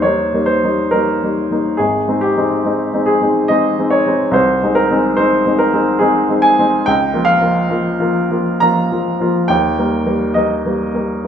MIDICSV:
0, 0, Header, 1, 2, 480
1, 0, Start_track
1, 0, Key_signature, -4, "major"
1, 0, Tempo, 877193
1, 977, Time_signature, 3, 2, 24, 8
1, 1446, Tempo, 845070
1, 4326, Tempo, 930233
1, 4806, Tempo, 865801
1, 6263, End_track
2, 0, Start_track
2, 0, Title_t, "Upright piano"
2, 0, Program_c, 0, 0
2, 0, Control_c, 0, 64, 127
2, 0, Note_on_c, 0, 39, 56
2, 0, Note_on_c, 0, 55, 42
2, 0, Note_on_c, 0, 58, 44
2, 0, Note_on_c, 0, 63, 46
2, 0, Note_on_c, 0, 72, 71
2, 0, Note_on_c, 0, 73, 76
2, 12, Note_off_c, 0, 73, 0
2, 12, Note_on_c, 0, 73, 75
2, 21, Note_off_c, 0, 55, 0
2, 21, Note_on_c, 0, 55, 39
2, 24, Note_off_c, 0, 58, 0
2, 24, Note_off_c, 0, 63, 0
2, 24, Note_on_c, 0, 58, 43
2, 24, Note_on_c, 0, 63, 43
2, 161, Note_off_c, 0, 55, 0
2, 163, Note_off_c, 0, 58, 0
2, 163, Note_off_c, 0, 63, 0
2, 179, Note_on_c, 0, 55, 41
2, 184, Note_on_c, 0, 58, 42
2, 185, Note_on_c, 0, 63, 45
2, 252, Note_off_c, 0, 72, 0
2, 252, Note_on_c, 0, 72, 72
2, 254, Note_off_c, 0, 73, 0
2, 322, Note_off_c, 0, 55, 0
2, 325, Note_off_c, 0, 58, 0
2, 326, Note_off_c, 0, 63, 0
2, 345, Note_on_c, 0, 55, 38
2, 347, Note_on_c, 0, 58, 41
2, 351, Note_on_c, 0, 63, 47
2, 486, Note_off_c, 0, 55, 0
2, 488, Note_off_c, 0, 58, 0
2, 489, Note_off_c, 0, 63, 0
2, 496, Note_off_c, 0, 72, 0
2, 498, Note_on_c, 0, 70, 77
2, 505, Note_on_c, 0, 55, 41
2, 508, Note_on_c, 0, 58, 43
2, 511, Note_on_c, 0, 63, 45
2, 647, Note_off_c, 0, 55, 0
2, 648, Note_off_c, 0, 58, 0
2, 650, Note_off_c, 0, 63, 0
2, 669, Note_on_c, 0, 55, 39
2, 672, Note_on_c, 0, 58, 40
2, 675, Note_on_c, 0, 63, 42
2, 808, Note_off_c, 0, 55, 0
2, 809, Note_off_c, 0, 58, 0
2, 812, Note_off_c, 0, 63, 0
2, 825, Note_on_c, 0, 55, 37
2, 829, Note_on_c, 0, 58, 40
2, 830, Note_on_c, 0, 63, 44
2, 964, Note_off_c, 0, 55, 0
2, 967, Note_off_c, 0, 58, 0
2, 967, Note_off_c, 0, 63, 0
2, 970, Note_on_c, 0, 68, 75
2, 978, Note_off_c, 0, 70, 0
2, 979, Note_on_c, 0, 32, 58
2, 986, Control_c, 0, 64, 0
2, 992, Note_off_c, 0, 39, 0
2, 1066, Control_c, 0, 64, 127
2, 1131, Note_off_c, 0, 32, 0
2, 1137, Note_on_c, 0, 56, 41
2, 1138, Note_on_c, 0, 60, 41
2, 1143, Note_on_c, 0, 63, 44
2, 1209, Note_off_c, 0, 68, 0
2, 1210, Note_on_c, 0, 67, 76
2, 1276, Note_off_c, 0, 56, 0
2, 1277, Note_off_c, 0, 60, 0
2, 1279, Note_off_c, 0, 63, 0
2, 1297, Note_on_c, 0, 56, 46
2, 1299, Note_on_c, 0, 60, 46
2, 1300, Note_on_c, 0, 63, 46
2, 1434, Note_off_c, 0, 56, 0
2, 1435, Note_off_c, 0, 60, 0
2, 1436, Note_off_c, 0, 63, 0
2, 1449, Note_on_c, 0, 56, 47
2, 1451, Note_on_c, 0, 60, 44
2, 1456, Note_on_c, 0, 63, 47
2, 1593, Note_off_c, 0, 56, 0
2, 1595, Note_off_c, 0, 60, 0
2, 1597, Note_off_c, 0, 63, 0
2, 1613, Note_on_c, 0, 56, 44
2, 1614, Note_on_c, 0, 60, 46
2, 1616, Note_on_c, 0, 63, 47
2, 1683, Note_on_c, 0, 68, 76
2, 1688, Note_off_c, 0, 67, 0
2, 1756, Note_off_c, 0, 56, 0
2, 1756, Note_off_c, 0, 60, 0
2, 1758, Note_off_c, 0, 63, 0
2, 1770, Note_on_c, 0, 56, 46
2, 1776, Note_on_c, 0, 60, 43
2, 1776, Note_on_c, 0, 63, 46
2, 1914, Note_off_c, 0, 56, 0
2, 1917, Note_off_c, 0, 60, 0
2, 1917, Note_off_c, 0, 63, 0
2, 1923, Note_on_c, 0, 75, 79
2, 1926, Note_off_c, 0, 68, 0
2, 1934, Note_on_c, 0, 56, 47
2, 1935, Note_on_c, 0, 60, 45
2, 1936, Note_on_c, 0, 63, 50
2, 2076, Note_off_c, 0, 56, 0
2, 2077, Note_off_c, 0, 60, 0
2, 2077, Note_off_c, 0, 63, 0
2, 2098, Note_on_c, 0, 56, 44
2, 2101, Note_on_c, 0, 60, 40
2, 2101, Note_on_c, 0, 63, 46
2, 2163, Note_on_c, 0, 73, 76
2, 2167, Note_off_c, 0, 75, 0
2, 2240, Note_off_c, 0, 56, 0
2, 2241, Note_off_c, 0, 60, 0
2, 2241, Note_off_c, 0, 63, 0
2, 2253, Note_on_c, 0, 56, 41
2, 2257, Note_on_c, 0, 60, 41
2, 2259, Note_on_c, 0, 63, 48
2, 2395, Note_on_c, 0, 36, 63
2, 2398, Note_off_c, 0, 56, 0
2, 2400, Note_off_c, 0, 60, 0
2, 2401, Note_off_c, 0, 63, 0
2, 2407, Note_on_c, 0, 72, 82
2, 2409, Note_off_c, 0, 73, 0
2, 2422, Control_c, 0, 64, 0
2, 2531, Control_c, 0, 64, 127
2, 2559, Note_off_c, 0, 36, 0
2, 2572, Note_on_c, 0, 56, 42
2, 2576, Note_on_c, 0, 60, 41
2, 2577, Note_on_c, 0, 63, 49
2, 2644, Note_on_c, 0, 70, 86
2, 2650, Note_off_c, 0, 72, 0
2, 2716, Note_off_c, 0, 56, 0
2, 2718, Note_off_c, 0, 60, 0
2, 2718, Note_off_c, 0, 63, 0
2, 2733, Note_on_c, 0, 56, 49
2, 2734, Note_on_c, 0, 60, 49
2, 2738, Note_on_c, 0, 63, 52
2, 2875, Note_off_c, 0, 56, 0
2, 2876, Note_off_c, 0, 60, 0
2, 2877, Note_off_c, 0, 63, 0
2, 2879, Note_on_c, 0, 72, 82
2, 2886, Note_off_c, 0, 70, 0
2, 2887, Note_on_c, 0, 56, 48
2, 2888, Note_on_c, 0, 60, 46
2, 2891, Note_on_c, 0, 63, 51
2, 3031, Note_off_c, 0, 56, 0
2, 3031, Note_off_c, 0, 60, 0
2, 3033, Note_off_c, 0, 63, 0
2, 3046, Note_on_c, 0, 56, 46
2, 3047, Note_on_c, 0, 60, 44
2, 3052, Note_on_c, 0, 63, 49
2, 3118, Note_on_c, 0, 70, 81
2, 3122, Note_off_c, 0, 72, 0
2, 3190, Note_off_c, 0, 56, 0
2, 3191, Note_off_c, 0, 60, 0
2, 3193, Note_off_c, 0, 63, 0
2, 3201, Note_on_c, 0, 56, 46
2, 3203, Note_on_c, 0, 60, 47
2, 3206, Note_on_c, 0, 63, 51
2, 3346, Note_on_c, 0, 68, 80
2, 3349, Note_off_c, 0, 56, 0
2, 3350, Note_off_c, 0, 60, 0
2, 3352, Note_off_c, 0, 63, 0
2, 3359, Note_on_c, 0, 56, 50
2, 3360, Note_on_c, 0, 60, 48
2, 3362, Note_on_c, 0, 63, 53
2, 3364, Note_off_c, 0, 70, 0
2, 3510, Note_off_c, 0, 56, 0
2, 3510, Note_off_c, 0, 60, 0
2, 3511, Note_off_c, 0, 63, 0
2, 3521, Note_on_c, 0, 56, 46
2, 3523, Note_on_c, 0, 60, 44
2, 3526, Note_on_c, 0, 63, 48
2, 3592, Note_on_c, 0, 80, 90
2, 3601, Note_off_c, 0, 68, 0
2, 3670, Note_off_c, 0, 56, 0
2, 3672, Note_off_c, 0, 60, 0
2, 3674, Note_off_c, 0, 63, 0
2, 3686, Note_on_c, 0, 56, 45
2, 3689, Note_on_c, 0, 60, 48
2, 3690, Note_on_c, 0, 63, 47
2, 3831, Note_off_c, 0, 56, 0
2, 3833, Note_off_c, 0, 60, 0
2, 3834, Note_off_c, 0, 63, 0
2, 3841, Note_off_c, 0, 80, 0
2, 3841, Note_on_c, 0, 79, 96
2, 3848, Note_on_c, 0, 37, 69
2, 3858, Control_c, 0, 64, 0
2, 3940, Control_c, 0, 64, 127
2, 3997, Note_on_c, 0, 58, 46
2, 3998, Note_on_c, 0, 53, 46
2, 4001, Note_off_c, 0, 37, 0
2, 4001, Note_on_c, 0, 65, 50
2, 4061, Note_on_c, 0, 77, 97
2, 4081, Note_off_c, 0, 79, 0
2, 4143, Note_off_c, 0, 53, 0
2, 4143, Note_off_c, 0, 58, 0
2, 4145, Note_off_c, 0, 65, 0
2, 4152, Note_on_c, 0, 53, 47
2, 4156, Note_on_c, 0, 65, 56
2, 4157, Note_on_c, 0, 58, 49
2, 4303, Note_off_c, 0, 53, 0
2, 4306, Note_off_c, 0, 58, 0
2, 4306, Note_off_c, 0, 65, 0
2, 4316, Note_on_c, 0, 53, 48
2, 4321, Note_on_c, 0, 58, 46
2, 4322, Note_on_c, 0, 65, 53
2, 4460, Note_off_c, 0, 53, 0
2, 4463, Note_off_c, 0, 58, 0
2, 4463, Note_off_c, 0, 65, 0
2, 4472, Note_on_c, 0, 53, 46
2, 4475, Note_on_c, 0, 58, 48
2, 4475, Note_on_c, 0, 65, 54
2, 4624, Note_off_c, 0, 53, 0
2, 4626, Note_off_c, 0, 58, 0
2, 4626, Note_off_c, 0, 65, 0
2, 4632, Note_on_c, 0, 53, 46
2, 4634, Note_on_c, 0, 58, 47
2, 4637, Note_on_c, 0, 65, 52
2, 4783, Note_off_c, 0, 53, 0
2, 4784, Note_off_c, 0, 58, 0
2, 4785, Note_off_c, 0, 65, 0
2, 4785, Note_on_c, 0, 82, 93
2, 4793, Note_on_c, 0, 53, 49
2, 4795, Note_off_c, 0, 77, 0
2, 4796, Note_on_c, 0, 58, 47
2, 4797, Note_on_c, 0, 65, 52
2, 4947, Note_off_c, 0, 53, 0
2, 4949, Note_off_c, 0, 58, 0
2, 4949, Note_off_c, 0, 65, 0
2, 4956, Note_on_c, 0, 53, 44
2, 4961, Note_on_c, 0, 58, 42
2, 4961, Note_on_c, 0, 65, 45
2, 5105, Note_off_c, 0, 53, 0
2, 5108, Note_off_c, 0, 58, 0
2, 5108, Note_off_c, 0, 65, 0
2, 5115, Note_on_c, 0, 53, 47
2, 5120, Note_on_c, 0, 58, 41
2, 5122, Note_on_c, 0, 65, 50
2, 5264, Note_off_c, 0, 53, 0
2, 5267, Note_off_c, 0, 58, 0
2, 5267, Note_off_c, 0, 65, 0
2, 5270, Note_on_c, 0, 79, 94
2, 5276, Note_off_c, 0, 82, 0
2, 5278, Note_on_c, 0, 39, 65
2, 5296, Control_c, 0, 64, 0
2, 5393, Control_c, 0, 64, 127
2, 5437, Note_off_c, 0, 39, 0
2, 5438, Note_on_c, 0, 55, 43
2, 5440, Note_on_c, 0, 58, 45
2, 5442, Note_on_c, 0, 70, 46
2, 5582, Note_off_c, 0, 55, 0
2, 5585, Note_off_c, 0, 58, 0
2, 5587, Note_off_c, 0, 70, 0
2, 5590, Note_on_c, 0, 55, 48
2, 5593, Note_on_c, 0, 58, 47
2, 5595, Note_on_c, 0, 70, 51
2, 5741, Note_off_c, 0, 55, 0
2, 5743, Note_off_c, 0, 58, 0
2, 5744, Note_off_c, 0, 70, 0
2, 5748, Note_on_c, 0, 75, 70
2, 5758, Note_off_c, 0, 79, 0
2, 5759, Note_on_c, 0, 55, 44
2, 5759, Note_on_c, 0, 58, 43
2, 5761, Note_on_c, 0, 70, 49
2, 5905, Note_off_c, 0, 55, 0
2, 5906, Note_off_c, 0, 58, 0
2, 5907, Note_off_c, 0, 70, 0
2, 5922, Note_on_c, 0, 55, 43
2, 5922, Note_on_c, 0, 58, 43
2, 5927, Note_on_c, 0, 70, 44
2, 6067, Note_off_c, 0, 55, 0
2, 6067, Note_off_c, 0, 58, 0
2, 6070, Note_off_c, 0, 70, 0
2, 6079, Note_on_c, 0, 55, 44
2, 6081, Note_on_c, 0, 58, 42
2, 6082, Note_on_c, 0, 70, 48
2, 6226, Note_off_c, 0, 55, 0
2, 6227, Note_off_c, 0, 58, 0
2, 6228, Note_off_c, 0, 70, 0
2, 6246, Note_on_c, 0, 55, 42
2, 6263, Note_off_c, 0, 55, 0
2, 6263, Note_off_c, 0, 75, 0
2, 6263, End_track
0, 0, End_of_file